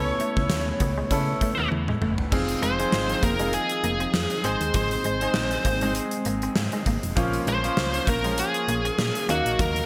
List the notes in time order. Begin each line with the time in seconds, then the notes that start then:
Already playing: C#2 C#3 A3 B3 C#4 E4 A4 C#5
0.20 A3, closed hi-hat
0.37 C#2, muted clean electric guitar stroke, kick
0.50 D#2, muted clean electric guitar stroke, snare, closed hi-hat
0.80 C#2 B3, kick, closed hi-hat
0.98 G#3
1.11 C#3 B3 C#4 E4 A4, muted clean electric guitar stroke, kick, closed hi-hat
1.41 A3, kick, closed hi-hat
1.58 D#2 B3
1.71 E2, muted clean electric guitar stroke, high tom
1.88 G#3, mid tom
2.01 F#1 A3, mid tom
2.18 floor tom
2.31 F1 F3 C4 D#4 F4 G#4, kick, crash
2.48 closed hi-hat
2.62 F1 G#3 C5, closed hi-hat
2.79 C4 D#4 F4 G#4, muted clean electric guitar stroke, closed hi-hat
2.92 G#1, muted clean electric guitar stroke, snare
3.09 closed hi-hat
3.23 F1 A#3 A#4, kick, closed hi-hat
3.39 G#3 C4 D#4 F4 G#4, closed hi-hat
3.53 G#4, muted clean electric guitar stroke, closed hi-hat
3.69 closed hi-hat
3.84 F1 A#3, closed hi-hat
4.00 C4, closed hi-hat
4.14 F2, snare
4.30 closed hi-hat
4.44 G#1 G#3 C4 D#4 G#4 C5, closed hi-hat
4.61 D#2, closed hi-hat
4.74 G#1 F3 C5, kick, closed hi-hat
4.91 closed hi-hat
5.04 G#1 G#3, closed hi-hat
5.21 G#3 C4 D#4 G#4, muted clean electric guitar stroke, closed hi-hat
5.34 A#1, muted clean electric guitar stroke, snare
5.51 closed hi-hat
5.65 G#1 A#3, kick, closed hi-hat
5.81 G#3 C4 D#4 G#4, closed hi-hat
5.95 muted clean electric guitar stroke, closed hi-hat
6.11 closed hi-hat
6.25 G#1 A#3, closed hi-hat
6.42 C4, closed hi-hat
6.56 G#2, muted clean electric guitar stroke, snare
6.72 G#3, closed hi-hat
6.86 G#1 A#3, kick, closed hi-hat
7.03 F1, closed hi-hat
7.16 A#1 F3 A#3 C#4 F4 F5, kick, closed hi-hat
7.33 closed hi-hat
7.47 A#1 G#3 C5, closed hi-hat
7.63 F3 A#3 C#4 F4, muted clean electric guitar stroke, closed hi-hat
7.77 C#2, muted clean electric guitar stroke, snare
7.94 closed hi-hat
8.07 A#1 A#3 A#4, kick, closed hi-hat
8.24 F3 G#3 A#3 C#4 F4, closed hi-hat
8.38 G#4, muted clean electric guitar stroke, closed hi-hat
8.54 closed hi-hat
8.68 A#1 A#3, closed hi-hat
8.85 C#4, closed hi-hat
8.98 A#2, snare
9.15 closed hi-hat
9.28 D#2 D#3 F#3 A#3 C#4 D#4 F#4 F5, closed hi-hat
9.45 A#1, closed hi-hat
9.59 D#2 F#3 A#4, kick, closed hi-hat
9.76 closed hi-hat